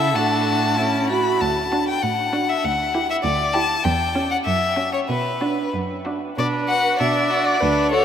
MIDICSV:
0, 0, Header, 1, 5, 480
1, 0, Start_track
1, 0, Key_signature, 2, "major"
1, 0, Tempo, 624350
1, 125, Time_signature, 2, 2, 24, 8
1, 1562, Tempo, 606673
1, 2997, Key_signature, 2, "minor"
1, 3482, Tempo, 638978
1, 4922, Tempo, 617920
1, 6222, End_track
2, 0, Start_track
2, 0, Title_t, "Violin"
2, 0, Program_c, 0, 40
2, 0, Note_on_c, 0, 76, 56
2, 121, Note_on_c, 0, 81, 49
2, 132, Note_off_c, 0, 76, 0
2, 836, Note_off_c, 0, 81, 0
2, 841, Note_on_c, 0, 83, 46
2, 1082, Note_on_c, 0, 81, 43
2, 1093, Note_off_c, 0, 83, 0
2, 1442, Note_off_c, 0, 81, 0
2, 1447, Note_on_c, 0, 79, 50
2, 1558, Note_on_c, 0, 78, 49
2, 1569, Note_off_c, 0, 79, 0
2, 1926, Note_on_c, 0, 76, 49
2, 1938, Note_off_c, 0, 78, 0
2, 2045, Note_on_c, 0, 78, 56
2, 2057, Note_off_c, 0, 76, 0
2, 2402, Note_off_c, 0, 78, 0
2, 2411, Note_on_c, 0, 76, 54
2, 2456, Note_off_c, 0, 76, 0
2, 2517, Note_on_c, 0, 74, 54
2, 2753, Note_on_c, 0, 81, 64
2, 2765, Note_off_c, 0, 74, 0
2, 2996, Note_on_c, 0, 79, 56
2, 3008, Note_off_c, 0, 81, 0
2, 3359, Note_off_c, 0, 79, 0
2, 3364, Note_on_c, 0, 78, 56
2, 3412, Note_off_c, 0, 78, 0
2, 3479, Note_on_c, 0, 76, 57
2, 3829, Note_off_c, 0, 76, 0
2, 3839, Note_on_c, 0, 73, 48
2, 3887, Note_off_c, 0, 73, 0
2, 3957, Note_on_c, 0, 71, 46
2, 4430, Note_off_c, 0, 71, 0
2, 4931, Note_on_c, 0, 74, 53
2, 4993, Note_off_c, 0, 74, 0
2, 5166, Note_on_c, 0, 78, 62
2, 5401, Note_off_c, 0, 78, 0
2, 5410, Note_on_c, 0, 76, 50
2, 5758, Note_on_c, 0, 74, 55
2, 5769, Note_off_c, 0, 76, 0
2, 6111, Note_off_c, 0, 74, 0
2, 6116, Note_on_c, 0, 73, 65
2, 6222, Note_off_c, 0, 73, 0
2, 6222, End_track
3, 0, Start_track
3, 0, Title_t, "Violin"
3, 0, Program_c, 1, 40
3, 0, Note_on_c, 1, 69, 49
3, 91, Note_off_c, 1, 69, 0
3, 121, Note_on_c, 1, 66, 38
3, 593, Note_on_c, 1, 64, 35
3, 604, Note_off_c, 1, 66, 0
3, 922, Note_off_c, 1, 64, 0
3, 1321, Note_on_c, 1, 66, 38
3, 1500, Note_off_c, 1, 66, 0
3, 1799, Note_on_c, 1, 66, 44
3, 1979, Note_off_c, 1, 66, 0
3, 2280, Note_on_c, 1, 67, 43
3, 2458, Note_off_c, 1, 67, 0
3, 2754, Note_on_c, 1, 67, 54
3, 2933, Note_off_c, 1, 67, 0
3, 3236, Note_on_c, 1, 67, 51
3, 3418, Note_off_c, 1, 67, 0
3, 3714, Note_on_c, 1, 66, 45
3, 3894, Note_off_c, 1, 66, 0
3, 4196, Note_on_c, 1, 66, 43
3, 4377, Note_off_c, 1, 66, 0
3, 4675, Note_on_c, 1, 66, 39
3, 4858, Note_off_c, 1, 66, 0
3, 4917, Note_on_c, 1, 62, 39
3, 5157, Note_on_c, 1, 66, 37
3, 5169, Note_off_c, 1, 62, 0
3, 5405, Note_on_c, 1, 62, 43
3, 5417, Note_off_c, 1, 66, 0
3, 5641, Note_on_c, 1, 66, 39
3, 5653, Note_off_c, 1, 62, 0
3, 5875, Note_off_c, 1, 66, 0
3, 5880, Note_on_c, 1, 62, 42
3, 6130, Note_on_c, 1, 66, 41
3, 6142, Note_off_c, 1, 62, 0
3, 6222, Note_off_c, 1, 66, 0
3, 6222, End_track
4, 0, Start_track
4, 0, Title_t, "Viola"
4, 0, Program_c, 2, 41
4, 0, Note_on_c, 2, 64, 39
4, 121, Note_on_c, 2, 62, 34
4, 133, Note_off_c, 2, 64, 0
4, 601, Note_off_c, 2, 62, 0
4, 606, Note_on_c, 2, 61, 38
4, 842, Note_on_c, 2, 66, 40
4, 854, Note_off_c, 2, 61, 0
4, 1083, Note_off_c, 2, 66, 0
4, 1325, Note_on_c, 2, 62, 40
4, 1502, Note_off_c, 2, 62, 0
4, 1798, Note_on_c, 2, 62, 42
4, 1979, Note_off_c, 2, 62, 0
4, 2283, Note_on_c, 2, 64, 44
4, 2460, Note_off_c, 2, 64, 0
4, 2758, Note_on_c, 2, 64, 49
4, 2935, Note_off_c, 2, 64, 0
4, 3241, Note_on_c, 2, 61, 52
4, 3421, Note_off_c, 2, 61, 0
4, 3711, Note_on_c, 2, 61, 49
4, 3893, Note_off_c, 2, 61, 0
4, 4198, Note_on_c, 2, 62, 42
4, 4378, Note_off_c, 2, 62, 0
4, 4686, Note_on_c, 2, 62, 35
4, 4864, Note_off_c, 2, 62, 0
4, 4923, Note_on_c, 2, 71, 44
4, 5374, Note_off_c, 2, 71, 0
4, 5400, Note_on_c, 2, 74, 50
4, 5873, Note_on_c, 2, 71, 45
4, 5885, Note_off_c, 2, 74, 0
4, 6118, Note_off_c, 2, 71, 0
4, 6124, Note_on_c, 2, 69, 47
4, 6222, Note_off_c, 2, 69, 0
4, 6222, End_track
5, 0, Start_track
5, 0, Title_t, "Cello"
5, 0, Program_c, 3, 42
5, 0, Note_on_c, 3, 49, 44
5, 122, Note_on_c, 3, 45, 38
5, 133, Note_off_c, 3, 49, 0
5, 926, Note_off_c, 3, 45, 0
5, 1085, Note_on_c, 3, 38, 44
5, 1463, Note_off_c, 3, 38, 0
5, 1559, Note_on_c, 3, 45, 46
5, 1941, Note_off_c, 3, 45, 0
5, 2045, Note_on_c, 3, 38, 43
5, 2421, Note_off_c, 3, 38, 0
5, 2519, Note_on_c, 3, 38, 50
5, 2896, Note_off_c, 3, 38, 0
5, 3000, Note_on_c, 3, 40, 57
5, 3382, Note_off_c, 3, 40, 0
5, 3486, Note_on_c, 3, 42, 52
5, 3859, Note_off_c, 3, 42, 0
5, 3957, Note_on_c, 3, 47, 43
5, 4339, Note_off_c, 3, 47, 0
5, 4439, Note_on_c, 3, 42, 41
5, 4822, Note_off_c, 3, 42, 0
5, 4922, Note_on_c, 3, 47, 47
5, 5327, Note_off_c, 3, 47, 0
5, 5407, Note_on_c, 3, 47, 51
5, 5806, Note_off_c, 3, 47, 0
5, 5887, Note_on_c, 3, 38, 48
5, 6222, Note_off_c, 3, 38, 0
5, 6222, End_track
0, 0, End_of_file